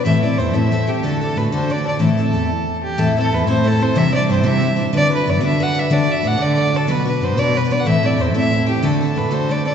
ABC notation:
X:1
M:6/8
L:1/16
Q:3/8=123
K:Ador
V:1 name="Fiddle"
e2 d2 c2 e4 G2 | A2 A2 B2 c2 d2 d2 | A8- A2 G2 | A2 A2 B2 c2 A2 c2 |
e2 d2 c2 e4- e/2 z3/2 | d2 B2 d2 e2 f2 e2 | d2 e2 f2 d4 A2 | B2 B2 c2 d2 B2 d3/2 f/2 |
e2 d2 c2 e4 G2 | A2 A2 B2 c2 d2 d2 |]
V:2 name="Twelve-string acoustic guitar"
[A,,E,A,CEA]2 [A,CEA]2 [A,CEA]2 [A,,E,A,CEA]2 [A,CEA]2 [A,CEA]2 | [D,A,DFA]2 [DFA]2 [A,DFA]2 [D,A,DFA]2 [A,DFA]2 [DFA]2 | [A,,E,A,CEA]2 [A,CEA]2 [A,CEA]2 z6 | [A,,E,A,CEA]2 [A,CEA]2 [A,CEA]2 [A,,E,A,CEA]2 [A,CEA]2 [A,CEA]2 |
[C,E,G,DEc]2 [G,DEc]2 [G,DEc]2 [C,E,G,DEc]2 [G,DEc]2 [G,DEc]2 | [D,B,DFB]2 [DFB]2 [B,DFB]2 [D,B,DFB]2 [B,DFB]2 [DFB]2 | [D,A,DFd]2 [DFd]2 [A,DFd]2 [D,A,DFd]2 [A,DFd]2 [DFd]2 | [B,,F,B,DFB]2 [B,DFB]2 [B,DFB]2 [B,,F,B,DFB]2 [B,DFB]2 [B,DFB]2 |
[A,,E,A,CEA]2 [A,CEA]2 [A,CEA]2 [A,,E,A,CEA]2 [A,CEA]2 [A,CEA]2 | [D,A,DFA]2 [DFA]2 [A,DFA]2 [D,A,DFA]2 [A,DFA]2 [DFA]2 |]
V:3 name="Cello" clef=bass
A,,2 z2 E,,2 A,,2 z4 | D,2 z2 A,,2 D,2 z4 | A,,2 z2 E,,2 z6 | A,,2 z2 E,,2 A,,2 z4 |
C,2 z2 G,,2 C,2 z4 | D,2 z2 F,,2 D,2 z4 | D,2 z2 A,,2 D,2 z4 | B,,2 z2 F,,2 B,,2 z4 |
A,,2 z2 E,,2 A,,2 z4 | D,2 z2 A,,2 D,2 z4 |]